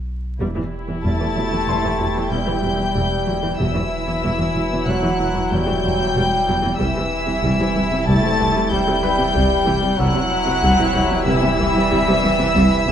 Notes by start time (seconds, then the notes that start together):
Already playing: B1
0.40 E1 E2 E3 G3 E4
0.56 E2 E3
0.87 E2 E3
1.03 E1 E2 G3 A3 A5 A6
1.20 E2 E3
1.35 E1 E2 F#3
1.52 E2 E3
1.67 E1 E2 G3 C6
1.83 E2 E3
1.98 E1 E2 F#3
2.15 E2 E3
2.29 E1 E2 G3 G5 G6
2.46 E2 E3
2.61 E1 E2 F#3
2.77 E2 E3
2.93 E1 E2 G3
3.26 E1 E2 F#3
3.43 E2 E3
3.58 E1 E2 E3 F#3 G3 E4 E5 E6
3.75 E2 E3
4.06 E2 E3
4.22 E1 E2 G3
4.38 E2 E3
4.55 E1 E2 F#3
4.72 E2 E3
4.86 E1 E2 F#3 G3 F#5 F#6
5.03 E2 E3
5.19 E1 E2 F#3
5.34 E2 E3
5.50 E1 E2 G3 G5 G6
5.66 E2 E3
5.82 E1 E2 F#3
5.98 E2 E3
6.15 E1 E2 G3
6.48 E1 E2 F#3
6.62 E2 E3
6.78 E1 C2 E3 G3 E4 E5 E6
6.95 C2 C3
7.27 C2 C3
7.42 C2 G3
7.60 C2 C3
7.75 C2 E3
7.92 C2 C3
8.06 C2 G3 A3 A5 A6
8.24 C2 C3
8.38 C2 E3
8.55 C2 C3
8.70 C2 G3 G5 G6
8.87 C2 C3
9.01 C2 E3 B4 B5
9.18 C2 C3
9.34 C2 G3
9.65 C2 E3
9.82 C2 C3
9.97 E1 C2 E3 F#3 G3 E4 F#5 E6 F#6
10.14 C2 C3
10.46 C2 C3
10.63 C2 G3
10.79 C2 C3
10.94 C2 E3
11.11 C2 C3
11.24 C2 E3 G3 E5 E6
11.42 C2 C3
11.58 C2 E3
11.75 C2 C3
11.91 C2 G3
12.08 C2 C3
12.22 C2 E3
12.39 C2 C3
12.54 C2 G3
12.86 C2 E3